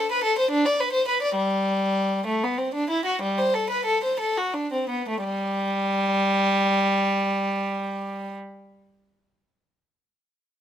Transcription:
0.00 A4
0.12 B4
0.24 A4
0.39 C5
0.51 D4
0.66 D5
0.80 B4
0.93 C5
1.08 B4
1.22 D5
1.36 G3
2.27 A3
2.43 B3
2.58 C4
2.74 D4
2.90 E4
3.05 F#4
3.22 G3
3.38 C5
3.54 A4
3.70 B4
3.85 A4
4.04 C5
4.20 A4
4.37 F#4
4.54 D4
4.73 C4
4.90 B3
5.09 A3
5.24 G3

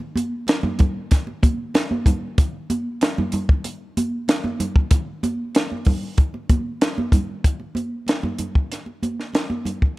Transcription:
0.00 muted conga
0.16 closed hi-hat, high conga
0.47 snare, closed hi-hat, muted conga
0.63 muted conga, high conga, low conga
0.79 kick, closed hi-hat, low conga
1.11 kick, snare, closed hi-hat, muted conga
1.27 muted conga
1.43 kick, closed hi-hat, high conga
1.74 snare, closed hi-hat, muted conga
1.91 high conga
2.06 kick, closed hi-hat, low conga
2.38 kick, closed hi-hat, muted conga
2.70 closed hi-hat, high conga
3.01 snare, closed hi-hat, muted conga
3.18 muted conga, high conga, low conga
3.32 closed hi-hat, low conga
3.49 kick
3.64 closed hi-hat, muted conga
3.97 closed hi-hat, high conga
4.28 snare, closed hi-hat, muted conga
4.44 muted conga, high conga
4.60 closed hi-hat, low conga
4.76 kick
4.91 kick, closed hi-hat, muted conga
5.23 closed hi-hat, high conga
5.55 snare, closed hi-hat
5.72 high conga
5.85 kick, open hi-hat, low conga
6.17 kick, closed hi-hat, muted conga
6.34 muted conga
6.49 kick, closed hi-hat, high conga
6.81 snare, closed hi-hat
6.98 muted conga, high conga
7.12 kick, closed hi-hat, low conga
7.44 kick, closed hi-hat
7.60 muted conga
7.75 closed hi-hat, high conga
8.07 snare, closed hi-hat, muted conga
8.23 muted conga, high conga, low conga
8.39 closed hi-hat, low conga
8.55 kick
8.72 snare, closed hi-hat
8.86 muted conga
9.03 closed hi-hat, high conga
9.20 snare
9.34 snare, closed hi-hat, muted conga
9.50 muted conga, high conga
9.65 closed hi-hat, low conga
9.82 kick

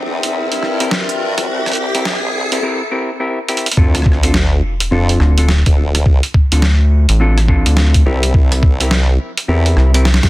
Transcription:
Already playing: C4 A#4 C5 E5, riser
0.05 E2
0.23 closed hi-hat
0.52 G2, closed hi-hat
0.63 cross-stick
0.80 C4 E4 G4 A#4, closed hi-hat
0.91 snare
1.09 closed hi-hat
1.37 E2, cross-stick, closed hi-hat
1.48 C2
1.66 cross-stick, closed hi-hat
1.68 closed hi-hat
1.72 closed hi-hat
1.73 closed hi-hat
1.75 closed hi-hat
1.95 C4 E4 G4 A#4, closed hi-hat
2.05 B1, snare
2.34 C2
2.52 C4 E4 G4 A#4, closed hi-hat
2.62 C4 E4 G4 A#4
2.91 C4 E4 G4 A#4
3.20 C4 E4 G4 A#4
3.49 C4 E4 G4 A#4, closed hi-hat
3.57 closed hi-hat
3.66 closed hi-hat
3.72 closed hi-hat
3.77 D2 C4 D4 F4 A4, kick, sub drop
3.95 cross-stick, closed hi-hat
4.02 kick, cross-stick
4.12 cross-stick
4.23 C4 D4 F4 A4, closed hi-hat
4.34 snare
4.80 closed hi-hat
4.91 F2 C4 D4 F4 A4
5.09 closed hi-hat
5.20 D2, cross-stick
5.38 C4 D4 F4 A4, closed hi-hat
5.49 snare
5.66 D2, kick, closed hi-hat
5.95 cross-stick, closed hi-hat
6.06 kick
6.23 closed hi-hat
6.34 kick
6.52 D2 C4 D4 F4 A4, closed hi-hat
6.62 snare
7.09 A1, closed hi-hat
7.20 C4 D4 F4 A4
7.38 cross-stick, closed hi-hat
7.48 C4 D4 F4 A4, kick
7.66 D2, closed hi-hat
7.77 snare
7.94 kick, closed hi-hat
8.06 C2 C4 E4 G4 A#4
8.23 closed hi-hat
8.34 C2, kick
8.52 cross-stick, closed hi-hat
8.63 kick
8.80 C4 E4 G4 A#4, closed hi-hat
8.91 snare
9.38 closed hi-hat
9.48 E2 C4 E4 G4 A#4
9.66 closed hi-hat
9.77 C2, cross-stick
9.94 C4 E4 G4 A#4, closed hi-hat
10.05 snare
10.14 snare
10.23 C2, kick, snare, closed hi-hat

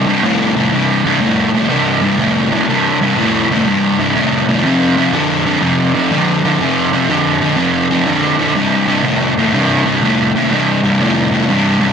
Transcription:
0.06 C2 G2
0.23 C2 A2
0.57 C2 A2
0.73 C2 G2
1.06 C2 G2
1.20 C2 A2
1.54 C2 A2
1.69 C2 G2
2.02 C2 G2
2.18 C2 A2
2.51 C2 A2
2.69 C2 G2
3.02 C2 G2
3.17 C2 A2
3.51 C2 A2
3.67 C2 G2
3.99 C2 G2
4.15 C2 A2
4.49 C2 A2
4.66 F2 C3
4.97 F2 C3
5.13 F2 D3
5.46 F2 D3
5.62 F2 C3
5.95 F2 C3
6.12 F2 D3
6.45 F2 D3
6.61 F2 C3
6.93 F2 C3
7.09 F2 D3
7.41 F2 D3
7.57 F2 C3
7.90 F2 C3
8.07 F2 D3
8.39 F2 D3
8.55 C2 G2
8.87 C2 G2
9.03 C2 A2
9.38 C2 A2
9.53 C2 G2
9.85 C2 G2
10.02 C2 A2
10.36 C2 A2
10.51 C2 G2
10.83 C2 G2
11.00 C2 A2
11.31 C2 A2
11.49 C2 G2
11.80 C2 G2

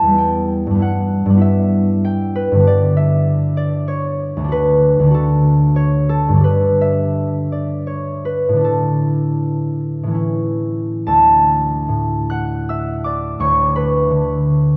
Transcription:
Already playing: E4 B4 G5 A5 B5
0.02 E2
0.07 G3
0.11 B3 E4
0.18 G5
0.67 G2
0.71 G3 B3
0.79 E4 F#5
1.26 G2
1.30 G3
1.34 B3 E4
1.41 E5
2.05 G5
2.35 B4
2.52 G2 D3
2.59 B3
2.63 G4
2.67 D5
2.97 E5
3.57 D5
3.88 C#5
4.37 D2 D3
4.44 D4
4.48 F#4 B4
4.99 D2 D3
5.07 D4 F#4
5.14 A4
5.76 C#5
6.09 A4
6.28 G2
6.33 D3 D4
6.40 G4 B4
6.81 E5
7.52 D5
7.87 C#5
8.25 B4
8.49 A2
8.53 D3 D4
8.60 E4 A4
10.03 A2 E3
10.11 C#4 E4
11.07 D2 A4 A5
11.89 A2
12.30 F#5 F#6
12.69 E5 E6
13.04 D5 D6
13.40 D2 C#5 C#6
13.76 B4 B5
14.11 D3

